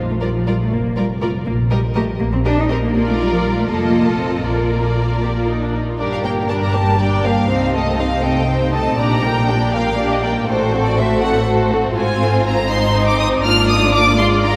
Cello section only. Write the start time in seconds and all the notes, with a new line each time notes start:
0.09 A3
0.21 G3
0.34 F3
0.46 G3
0.59 A3
0.72 A#3
0.96 G3
1.21 A3
1.46 A#3
1.71 G3
1.95 A3
2.20 A#3
2.33 C4
2.45 D4
2.58 D#4
2.70 C4
2.83 A#3
2.95 A#3
3.07 A3
3.20 G3
3.32 F3
3.44 G3
3.57 A3
3.69 A#3
4.07 A3
4.19 C4
4.45 A#3
5.99 G2
7.49 C3
8.99 A#2
10.48 A2
11.96 G#2
13.44 G#2